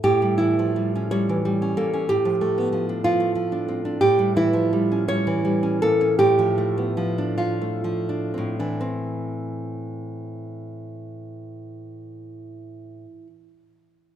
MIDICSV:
0, 0, Header, 1, 2, 480
1, 0, Start_track
1, 0, Key_signature, 0, "minor"
1, 0, Tempo, 703400
1, 26, Time_signature, 6, 3, 24, 8
1, 986, Tempo, 644468
1, 2906, Tempo, 722892
1, 4346, Tempo, 787402
1, 4826, Tempo, 878477
1, 5306, Tempo, 967742
1, 5786, Tempo, 896861
1, 8641, End_track
2, 0, Start_track
2, 0, Title_t, "Nylon-string guitar"
2, 0, Program_c, 0, 24
2, 25, Note_on_c, 0, 45, 55
2, 26, Note_on_c, 0, 67, 74
2, 150, Note_on_c, 0, 55, 39
2, 256, Note_off_c, 0, 67, 0
2, 258, Note_on_c, 0, 64, 55
2, 266, Note_on_c, 0, 52, 37
2, 400, Note_off_c, 0, 52, 0
2, 403, Note_on_c, 0, 53, 36
2, 511, Note_off_c, 0, 55, 0
2, 519, Note_on_c, 0, 55, 38
2, 649, Note_off_c, 0, 64, 0
2, 652, Note_on_c, 0, 61, 38
2, 753, Note_off_c, 0, 55, 0
2, 758, Note_on_c, 0, 73, 71
2, 761, Note_on_c, 0, 55, 39
2, 883, Note_on_c, 0, 52, 38
2, 983, Note_off_c, 0, 55, 0
2, 991, Note_on_c, 0, 55, 42
2, 1106, Note_off_c, 0, 61, 0
2, 1112, Note_off_c, 0, 53, 0
2, 1115, Note_on_c, 0, 61, 35
2, 1210, Note_off_c, 0, 73, 0
2, 1225, Note_off_c, 0, 45, 0
2, 1228, Note_on_c, 0, 58, 35
2, 1229, Note_on_c, 0, 69, 60
2, 1342, Note_off_c, 0, 61, 0
2, 1351, Note_on_c, 0, 61, 34
2, 1459, Note_off_c, 0, 69, 0
2, 1463, Note_off_c, 0, 55, 0
2, 1466, Note_on_c, 0, 67, 67
2, 1468, Note_off_c, 0, 58, 0
2, 1471, Note_off_c, 0, 61, 0
2, 1471, Note_on_c, 0, 45, 53
2, 1476, Note_off_c, 0, 52, 0
2, 1587, Note_on_c, 0, 53, 35
2, 1706, Note_on_c, 0, 57, 35
2, 1830, Note_on_c, 0, 59, 33
2, 1931, Note_off_c, 0, 53, 0
2, 1937, Note_off_c, 0, 57, 0
2, 1940, Note_on_c, 0, 53, 35
2, 2060, Note_off_c, 0, 67, 0
2, 2063, Note_on_c, 0, 62, 38
2, 2174, Note_off_c, 0, 53, 0
2, 2176, Note_on_c, 0, 65, 62
2, 2183, Note_on_c, 0, 53, 39
2, 2292, Note_off_c, 0, 62, 0
2, 2295, Note_on_c, 0, 57, 40
2, 2398, Note_off_c, 0, 53, 0
2, 2407, Note_on_c, 0, 53, 38
2, 2529, Note_off_c, 0, 59, 0
2, 2532, Note_on_c, 0, 62, 37
2, 2651, Note_off_c, 0, 57, 0
2, 2654, Note_on_c, 0, 60, 34
2, 2769, Note_off_c, 0, 62, 0
2, 2778, Note_on_c, 0, 62, 39
2, 2872, Note_off_c, 0, 65, 0
2, 2878, Note_off_c, 0, 45, 0
2, 2895, Note_on_c, 0, 67, 70
2, 2899, Note_off_c, 0, 53, 0
2, 2901, Note_on_c, 0, 45, 55
2, 2903, Note_off_c, 0, 60, 0
2, 2904, Note_off_c, 0, 62, 0
2, 3015, Note_on_c, 0, 55, 41
2, 3123, Note_off_c, 0, 67, 0
2, 3133, Note_on_c, 0, 52, 39
2, 3134, Note_on_c, 0, 64, 62
2, 3243, Note_off_c, 0, 52, 0
2, 3245, Note_on_c, 0, 53, 38
2, 3366, Note_off_c, 0, 55, 0
2, 3374, Note_on_c, 0, 55, 42
2, 3498, Note_on_c, 0, 61, 39
2, 3601, Note_off_c, 0, 55, 0
2, 3604, Note_off_c, 0, 64, 0
2, 3608, Note_on_c, 0, 55, 43
2, 3611, Note_on_c, 0, 73, 75
2, 3731, Note_off_c, 0, 53, 0
2, 3734, Note_on_c, 0, 52, 46
2, 3844, Note_off_c, 0, 55, 0
2, 3852, Note_on_c, 0, 55, 45
2, 3965, Note_off_c, 0, 61, 0
2, 3973, Note_on_c, 0, 61, 42
2, 4074, Note_off_c, 0, 73, 0
2, 4099, Note_on_c, 0, 69, 69
2, 4101, Note_off_c, 0, 55, 0
2, 4104, Note_on_c, 0, 58, 39
2, 4217, Note_off_c, 0, 61, 0
2, 4225, Note_on_c, 0, 61, 42
2, 4317, Note_off_c, 0, 45, 0
2, 4335, Note_off_c, 0, 69, 0
2, 4340, Note_off_c, 0, 52, 0
2, 4343, Note_on_c, 0, 67, 76
2, 4347, Note_off_c, 0, 58, 0
2, 4347, Note_off_c, 0, 61, 0
2, 4347, Note_on_c, 0, 45, 59
2, 4465, Note_on_c, 0, 53, 42
2, 4581, Note_on_c, 0, 57, 40
2, 4702, Note_on_c, 0, 59, 37
2, 4813, Note_off_c, 0, 53, 0
2, 4821, Note_on_c, 0, 53, 41
2, 4935, Note_off_c, 0, 59, 0
2, 4937, Note_on_c, 0, 62, 38
2, 5035, Note_off_c, 0, 67, 0
2, 5040, Note_off_c, 0, 53, 0
2, 5043, Note_on_c, 0, 65, 55
2, 5047, Note_on_c, 0, 53, 41
2, 5167, Note_off_c, 0, 57, 0
2, 5173, Note_on_c, 0, 57, 38
2, 5291, Note_off_c, 0, 53, 0
2, 5298, Note_on_c, 0, 53, 37
2, 5416, Note_off_c, 0, 62, 0
2, 5422, Note_on_c, 0, 62, 32
2, 5543, Note_off_c, 0, 57, 0
2, 5545, Note_on_c, 0, 60, 29
2, 5558, Note_off_c, 0, 45, 0
2, 5564, Note_on_c, 0, 45, 42
2, 5666, Note_off_c, 0, 62, 0
2, 5672, Note_off_c, 0, 53, 0
2, 5672, Note_on_c, 0, 62, 30
2, 5674, Note_on_c, 0, 52, 35
2, 5760, Note_off_c, 0, 65, 0
2, 5771, Note_off_c, 0, 60, 0
2, 5777, Note_on_c, 0, 60, 41
2, 5786, Note_off_c, 0, 62, 0
2, 8045, Note_off_c, 0, 45, 0
2, 8164, Note_off_c, 0, 52, 0
2, 8275, Note_off_c, 0, 60, 0
2, 8641, End_track
0, 0, End_of_file